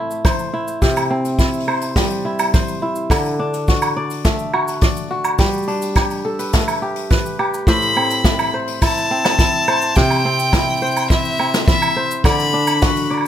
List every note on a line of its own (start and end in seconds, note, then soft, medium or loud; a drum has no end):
0.00 0.87 A2 medium
0.00 1.67 A3 medium
0.00 0.88 C4 medium
0.00 0.53 E4 medium
0.00 0.24 C5 medium
0.11 cabasa medium
0.24 1.44 C5 medium
0.24 kick loud
0.24 open hi-hat medium
0.24 cabasa medium
0.24 low woodblock medium
0.39 cabasa soft
0.53 1.39 E4 medium
0.68 cabasa medium
0.82 3.15 C3 medium
0.82 kick medium
0.82 open hi-hat medium
0.82 cabasa medium
0.96 open hi-hat soft
0.96 cabasa soft
0.96 low woodblock medium
1.10 3.16 C4 medium
1.24 open hi-hat soft
1.24 cabasa medium
1.39 2.25 E4 medium
1.39 kick medium
1.39 open hi-hat medium
1.39 cabasa medium
1.54 cabasa soft
1.60 open hi-hat soft
1.68 2.53 C5 medium
1.68 low woodblock medium
1.81 open hi-hat soft
1.81 cabasa medium
1.96 3.15 G3 medium
1.96 kick medium
1.96 snare medium
1.96 open hi-hat medium
1.96 cabasa medium
2.01 open hi-hat medium
2.06 open hi-hat soft
2.10 cabasa soft
2.25 2.82 E4 medium
2.39 open hi-hat medium
2.39 cabasa medium
2.39 low woodblock medium
2.53 3.72 C5 medium
2.53 kick loud
2.53 open hi-hat medium
2.53 cabasa medium
2.68 cabasa soft
2.82 4.39 E4 medium
2.96 cabasa medium
3.10 5.45 D3 medium
3.10 kick medium
3.10 open hi-hat medium
3.10 cabasa medium
3.10 low woodblock medium
3.25 open hi-hat soft
3.25 cabasa soft
3.39 5.45 D4 medium
3.53 open hi-hat soft
3.53 cabasa medium
3.68 4.53 F#4 medium
3.68 kick medium
3.68 open hi-hat medium
3.68 cabasa medium
3.82 open hi-hat soft
3.82 cabasa soft
3.82 low woodblock medium
3.96 4.81 D5 medium
4.10 open hi-hat medium
4.10 cabasa medium
4.25 6.25 A3 medium
4.25 kick loud
4.25 snare medium
4.25 open hi-hat medium
4.25 cabasa medium
4.39 cabasa soft
4.53 5.10 F#4 medium
4.53 low woodblock medium
4.68 open hi-hat medium
4.68 cabasa medium
4.81 5.93 D5 medium
4.81 kick loud
4.81 open hi-hat medium
4.81 cabasa medium
4.97 cabasa medium
5.11 6.02 F#4 medium
5.24 cabasa medium
5.24 low woodblock medium
5.38 7.73 G3 medium
5.38 kick medium
5.38 open hi-hat medium
5.38 cabasa medium
5.53 cabasa soft
5.58 cabasa soft
5.63 cabasa soft
5.68 7.73 D4 medium
5.68 open hi-hat soft
5.82 open hi-hat soft
5.82 cabasa medium
5.95 6.82 G4 medium
5.95 kick medium
5.95 open hi-hat medium
5.95 cabasa medium
5.95 low woodblock medium
6.10 open hi-hat soft
6.10 cabasa soft
6.25 7.56 A4 medium
6.39 7.10 B4 medium
6.39 open hi-hat medium
6.39 cabasa medium
6.53 8.53 A3 medium
6.53 kick medium
6.53 snare medium
6.53 open hi-hat medium
6.53 cabasa medium
6.68 open hi-hat soft
6.68 cabasa soft
6.68 low woodblock medium
6.82 7.39 G4 medium
6.96 open hi-hat medium
7.10 8.02 B4 medium
7.10 kick medium
7.10 open hi-hat medium
7.10 cabasa medium
7.26 cabasa soft
7.39 8.80 G4 medium
7.39 low woodblock medium
7.54 cabasa medium
7.67 10.01 A2 medium
7.67 8.53 C5 medium
7.67 8.49 B5 loud
7.67 kick loud
7.67 open hi-hat medium
7.67 cabasa medium
7.82 open hi-hat soft
7.82 cabasa soft
7.96 9.10 C4 medium
7.96 low woodblock medium
8.10 open hi-hat medium
8.10 cabasa medium
8.24 8.82 E4 medium
8.24 kick medium
8.24 snare medium
8.24 open hi-hat medium
8.24 cabasa medium
8.38 open hi-hat soft
8.38 cabasa medium
8.38 low woodblock medium
8.54 9.67 C5 medium
8.67 open hi-hat medium
8.81 9.39 E4 medium
8.81 9.98 A5 loud
8.81 kick medium
8.81 open hi-hat medium
8.81 cabasa medium
8.81 low woodblock medium
8.97 cabasa soft
9.11 10.25 C4 medium
9.25 snare medium
9.25 open hi-hat medium
9.25 cabasa medium
9.25 low woodblock medium
9.39 10.53 E4 medium
9.39 kick loud
9.39 open hi-hat medium
9.39 cabasa medium
9.68 9.97 C5 medium
9.68 cabasa soft
9.68 low woodblock medium
9.82 cabasa medium
9.95 12.30 C3 medium
9.95 10.82 C5 medium
9.95 11.10 G5 loud
9.95 kick medium
9.95 open hi-hat medium
9.95 cabasa medium
10.10 open hi-hat medium
10.10 cabasa soft
10.10 low woodblock medium
10.25 11.39 C4 medium
10.39 open hi-hat soft
10.39 cabasa medium
10.53 11.10 E4 medium
10.53 kick loud
10.53 snare medium
10.53 open hi-hat medium
10.53 cabasa medium
10.53 low woodblock medium
10.67 open hi-hat soft
10.67 cabasa soft
10.72 cabasa soft
10.77 cabasa soft
10.82 11.96 C5 medium
10.82 cabasa soft
10.86 cabasa soft
10.91 cabasa soft
10.96 open hi-hat medium
10.96 cabasa medium
10.96 low woodblock medium
11.10 11.67 E4 medium
11.10 11.64 E5 loud
11.10 kick loud
11.10 open hi-hat medium
11.10 cabasa medium
11.25 cabasa soft
11.39 13.19 C4 medium
11.39 low woodblock medium
11.53 snare medium
11.53 open hi-hat medium
11.53 cabasa medium
11.68 13.24 E4 medium
11.68 12.08 E5 loud
11.68 kick loud
11.68 open hi-hat medium
11.68 cabasa medium
11.82 cabasa medium
11.82 low woodblock medium
11.96 13.15 C5 medium
12.11 cabasa medium
12.24 13.28 D3 medium
12.24 13.10 D5 medium
12.24 13.07 B5 loud
12.24 kick loud
12.24 open hi-hat medium
12.24 cabasa medium
12.24 low woodblock medium
12.39 open hi-hat soft
12.39 cabasa medium
12.53 13.28 D4 medium
12.67 open hi-hat soft
12.67 cabasa medium
12.67 low woodblock medium
12.81 13.28 F#4 medium
12.81 kick loud
12.81 snare medium
12.81 open hi-hat medium
12.81 cabasa medium
12.96 open hi-hat soft
12.96 cabasa medium
13.10 13.28 D5 medium
13.10 low woodblock soft
13.14 low woodblock soft
13.17 low woodblock soft
13.21 low woodblock medium